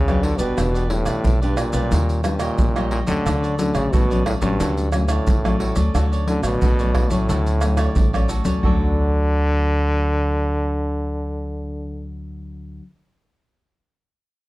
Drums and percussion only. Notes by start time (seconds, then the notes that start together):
0.08 pandeiro, tamborim, maracas
0.23 pandeiro
0.39 pandeiro, maracas
0.58 pandeiro, tamborim, maracas, surdo
0.75 pandeiro, maracas
0.90 pandeiro
1.06 pandeiro, tamborim, maracas
1.25 pandeiro, maracas, surdo
1.43 pandeiro, maracas
1.57 pandeiro, tamborim, maracas
1.73 pandeiro, maracas
1.92 pandeiro, maracas, surdo
2.09 pandeiro, maracas
2.24 pandeiro, tamborim, maracas
2.40 pandeiro, tamborim, maracas
2.58 pandeiro, maracas, surdo
2.76 pandeiro, tamborim, maracas
2.91 pandeiro
3.07 pandeiro, maracas
3.26 pandeiro, tamborim, maracas, surdo
3.44 pandeiro, maracas
3.59 pandeiro, maracas
3.75 pandeiro, tamborim, maracas
3.93 pandeiro, maracas, surdo
4.11 pandeiro, maracas
4.26 pandeiro, tamborim
4.42 pandeiro, maracas
4.60 pandeiro, maracas, surdo
4.78 pandeiro, maracas
4.92 pandeiro, tamborim, maracas
5.08 pandeiro, tamborim, maracas
5.27 pandeiro, maracas, surdo
5.45 pandeiro, tamborim, maracas
5.60 pandeiro
5.76 pandeiro, maracas
5.95 pandeiro, tamborim, maracas, surdo
6.13 pandeiro, maracas
6.28 pandeiro
6.43 pandeiro, tamborim, maracas
6.62 pandeiro, maracas, surdo
6.79 pandeiro, maracas
6.95 pandeiro, tamborim, surdo
7.10 pandeiro, maracas
7.29 pandeiro, maracas, surdo
7.46 pandeiro, maracas
7.61 pandeiro, tamborim, maracas
7.77 pandeiro, tamborim, maracas
7.96 pandeiro, maracas, surdo
8.14 pandeiro, tamborim, maracas
8.29 pandeiro, maracas
8.45 pandeiro, maracas
8.63 surdo